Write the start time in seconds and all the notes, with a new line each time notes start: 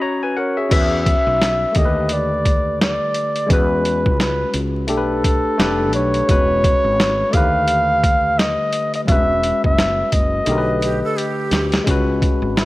Already playing: C#4 F#4
0.02 C#5 A#5
0.23 B4 G#5
0.37 A#4 C#5 F#5
0.57 G#4 E5
0.69 E2 C#4 F#4 B4 E5, kick, closed hi-hat, crash
1.06 kick, closed hi-hat
1.27 B1
1.42 snare, closed hi-hat
1.72 D#2 D3 A3, kick, closed hi-hat
1.77 G4 A4 D#5
1.85 B4
2.09 D5, closed hi-hat
2.45 kick, closed hi-hat
2.81 D5, snare, closed hi-hat
3.14 closed hi-hat
3.36 closed hi-hat
3.47 E2 G#3 C#4, kick, closed hi-hat
3.51 F#4 B4
3.85 closed hi-hat
4.06 C#2, kick
4.20 B4, snare, closed hi-hat
4.54 C#2, closed hi-hat
4.87 B1 A3 D4 G4 A4, closed hi-hat
4.97 B4
5.24 kick, closed hi-hat
5.58 F1 A3 D4 G4 B4, snare, closed hi-hat
5.93 B1 C#5, closed hi-hat
6.14 closed hi-hat
6.28 E1 G#3 C#4 F#4 B4, kick, closed hi-hat
6.64 kick, closed hi-hat
6.84 G#1
7.00 snare, closed hi-hat
7.31 D#2 D3 A3 F5, kick, closed hi-hat
7.35 G4 B4
7.68 closed hi-hat
8.04 kick, closed hi-hat
8.38 D#5, snare, closed hi-hat
8.73 closed hi-hat
8.94 D#5, closed hi-hat
9.05 E1 G3 C#4 E5, kick, closed hi-hat
9.09 G#3 F#4 B4
9.43 closed hi-hat
9.64 F#1 E5, kick
9.78 snare, closed hi-hat
10.12 F#1 D#5, kick, closed hi-hat
10.45 B1 D3 A3, closed hi-hat
10.49 G4 A#4
10.58 B4
10.82 G4, closed hi-hat
11.04 A4
11.17 G4, closed hi-hat
11.51 D2, snare, closed hi-hat
11.72 snare, closed hi-hat
11.84 C#2 G#3 C#4, kick, closed hi-hat
11.89 F#4 B4
12.22 kick, closed hi-hat
12.42 G#1
12.57 E4, snare, closed hi-hat